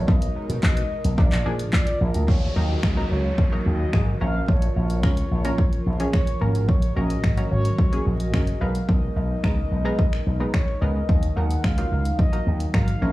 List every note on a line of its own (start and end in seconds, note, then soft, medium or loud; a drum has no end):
0.00 1.17 B2 medium
0.00 0.69 G#3 medium
0.00 1.17 G#3 medium
0.00 0.69 B3 medium
0.00 0.69 D#4 medium
0.00 1.17 D#4 medium
0.00 0.69 A#4 medium
0.00 2.26 A#4 medium
0.08 0.26 B1 loud
0.08 0.62 D#5 loud
0.08 kick loud
0.22 closed hi-hat medium
0.49 0.59 B2 medium
0.49 closed hi-hat medium
0.63 0.81 B2 loud
0.63 1.14 D#5 loud
0.63 kick loud
0.63 clap loud
0.77 closed hi-hat medium
1.04 1.14 B1 medium
1.04 closed hi-hat medium
1.18 1.27 A#1 loud
1.18 2.27 D3 medium
1.18 1.34 F3 medium
1.18 2.27 F3 medium
1.18 1.34 A#3 medium
1.18 1.35 D4 medium
1.18 2.27 F4 medium
1.18 1.35 A#4 medium
1.18 1.69 D5 medium
1.18 kick loud
1.32 1.41 A#1 medium
1.32 clap medium
1.32 closed hi-hat soft
1.45 1.64 A#2 loud
1.45 2.03 F3 medium
1.45 2.03 A#3 medium
1.45 2.03 D4 medium
1.45 2.03 G#4 medium
1.59 closed hi-hat medium
1.73 1.82 A#2 loud
1.73 1.99 D5 medium
1.73 kick loud
1.73 clap loud
1.87 closed hi-hat medium
2.01 2.10 A#1 medium
2.01 2.30 A#4 medium
2.14 2.24 D2 medium
2.14 closed hi-hat medium
2.28 2.46 D#2 loud
2.28 4.19 D#3 medium
2.28 4.19 F#3 medium
2.28 4.19 F#4 medium
2.28 13.12 A#4 medium
2.28 2.57 C#5 medium
2.28 kick loud
2.28 downlifter medium
2.56 2.74 D#2 medium
2.56 2.80 F#3 medium
2.56 2.80 A#3 medium
2.56 2.80 D#4 medium
2.56 2.81 A#4 medium
2.56 3.12 D#5 loud
2.83 3.01 C#2 medium
2.83 finger snap loud
2.83 kick loud
2.97 3.30 F#3 medium
2.97 3.30 A#3 medium
2.97 3.30 D#4 medium
2.97 3.30 A#4 medium
3.11 3.29 C#2 medium
3.11 3.66 C#5 loud
3.38 kick loud
3.52 3.77 F#3 medium
3.52 3.77 A#3 medium
3.52 3.77 D#4 medium
3.52 3.77 A#4 medium
3.66 3.84 D#2 medium
3.66 4.17 D#5 loud
3.93 4.12 G#1 medium
3.93 4.21 F#3 medium
3.93 4.20 A#3 medium
3.93 4.21 D#4 medium
3.93 4.21 G#4 medium
3.93 finger snap loud
3.93 kick loud
4.21 4.39 A#1 loud
4.21 8.57 C#3 medium
4.21 6.66 F3 medium
4.21 4.87 F3 medium
4.21 4.87 A#3 medium
4.21 4.87 C#4 medium
4.21 6.66 F4 medium
4.21 4.87 A#4 medium
4.21 4.46 F5 medium
4.48 4.67 A#1 loud
4.48 6.10 C#5 loud
4.48 kick loud
4.62 closed hi-hat medium
4.76 5.03 A#1 medium
4.90 closed hi-hat medium
5.03 5.22 C#2 medium
5.03 5.28 F3 medium
5.03 5.28 A#3 medium
5.03 5.28 C#4 medium
5.03 5.28 A#4 medium
5.03 finger snap loud
5.03 kick loud
5.17 closed hi-hat medium
5.31 5.49 A#1 medium
5.45 5.77 F3 medium
5.45 5.77 A#3 medium
5.45 5.78 C#4 medium
5.45 5.78 A#4 loud
5.45 closed hi-hat medium
5.58 kick loud
5.73 closed hi-hat soft
5.86 6.04 A#1 medium
6.00 6.24 F3 medium
6.00 6.25 A#3 medium
6.00 6.25 C#4 medium
6.00 6.25 G#4 medium
6.00 closed hi-hat medium
6.13 6.42 C#5 medium
6.13 finger snap loud
6.13 kick loud
6.27 closed hi-hat soft
6.41 6.69 G#1 medium
6.41 6.69 F3 medium
6.41 6.69 A#3 medium
6.41 6.69 C#4 medium
6.41 6.69 A#4 medium
6.55 closed hi-hat medium
6.68 6.87 A#1 medium
6.68 8.59 F#3 medium
6.68 8.60 F#4 medium
6.68 6.95 C#5 loud
6.68 kick loud
6.82 closed hi-hat medium
6.96 7.14 A#1 medium
6.96 7.21 F#3 medium
6.96 7.21 A#3 medium
6.96 7.21 C#4 medium
6.96 7.21 A#4 medium
6.96 7.47 D#5 loud
7.10 closed hi-hat medium
7.24 7.42 G#1 medium
7.24 finger snap loud
7.24 kick loud
7.37 7.70 F#3 medium
7.37 7.70 A#3 medium
7.37 7.70 C#4 medium
7.37 7.70 A#4 medium
7.37 closed hi-hat medium
7.51 7.69 G#1 medium
7.51 8.07 C#5 loud
7.65 closed hi-hat medium
7.78 kick loud
7.92 8.17 F#3 medium
7.92 8.17 A#3 medium
7.92 8.17 C#4 medium
7.92 8.17 G#4 medium
7.92 closed hi-hat soft
8.06 8.34 A#1 medium
8.06 8.62 D#5 loud
8.20 closed hi-hat medium
8.33 8.52 F#1 medium
8.33 8.61 F#3 medium
8.33 8.61 A#3 medium
8.33 8.61 C#4 medium
8.33 8.60 A#4 medium
8.33 finger snap loud
8.33 kick loud
8.47 closed hi-hat soft
8.61 8.79 B1 medium
8.61 11.07 B2 medium
8.61 9.27 G#3 medium
8.61 11.07 G#3 medium
8.61 9.27 B3 medium
8.61 9.27 D#4 medium
8.61 11.07 D#4 medium
8.61 9.27 A#4 medium
8.61 8.87 F5 loud
8.75 closed hi-hat medium
8.88 9.07 B1 loud
8.88 10.50 D#5 loud
8.88 kick loud
9.16 9.34 B1 medium
9.43 9.62 C#2 medium
9.43 9.68 G#3 medium
9.43 9.68 B3 medium
9.43 9.68 D#4 medium
9.43 9.68 A#4 medium
9.43 finger snap loud
9.43 kick loud
9.71 9.90 B1 medium
9.85 10.18 G#3 medium
9.85 10.18 B3 medium
9.85 10.18 D#4 medium
9.85 10.18 A#4 loud
9.99 kick loud
10.13 finger snap medium
10.26 10.45 B1 medium
10.40 10.65 G#3 medium
10.40 10.65 B3 medium
10.40 10.65 D#4 medium
10.40 10.65 A#4 medium
10.54 10.82 C#5 loud
10.54 finger snap loud
10.54 kick loud
10.81 11.00 C#2 medium
10.81 11.09 G#3 medium
10.81 11.09 B3 medium
10.81 11.09 D#4 medium
10.81 11.09 A#4 medium
10.81 11.37 D#5 loud
11.09 11.27 D#2 medium
11.09 13.00 D#3 medium
11.09 13.00 F#3 medium
11.09 13.00 D#4 medium
11.09 kick loud
11.23 closed hi-hat medium
11.36 11.55 D#2 medium
11.36 11.61 F#3 medium
11.36 11.61 A#3 medium
11.36 11.61 D#4 medium
11.36 11.61 A#4 medium
11.36 11.65 F#5 loud
11.51 closed hi-hat medium
11.63 11.82 C#2 medium
11.63 12.18 F5 loud
11.63 finger snap loud
11.63 kick loud
11.78 12.10 F#3 medium
11.78 12.11 A#3 medium
11.78 12.11 D#4 medium
11.78 12.11 F4 medium
11.78 closed hi-hat medium
11.92 12.10 C#2 medium
12.05 closed hi-hat medium
12.18 12.70 D#5 loud
12.18 kick loud
12.33 12.57 F#3 medium
12.33 12.57 A#3 medium
12.33 12.57 D#4 medium
12.33 12.57 A#4 medium
12.33 closed hi-hat soft
12.47 12.65 D#2 medium
12.60 closed hi-hat medium
12.73 12.92 G#1 medium
12.73 13.02 F#3 medium
12.73 13.01 A#3 medium
12.73 13.02 D#4 medium
12.73 13.01 A#4 medium
12.73 13.12 F5 loud
12.73 finger snap loud
12.73 kick loud
12.88 closed hi-hat medium
13.02 13.12 A#1 loud
13.02 13.12 C#3 medium
13.02 13.12 F3 medium
13.02 13.12 A#3 medium
13.02 13.12 C#4 medium
13.02 13.12 F4 medium
13.02 13.12 A#4 medium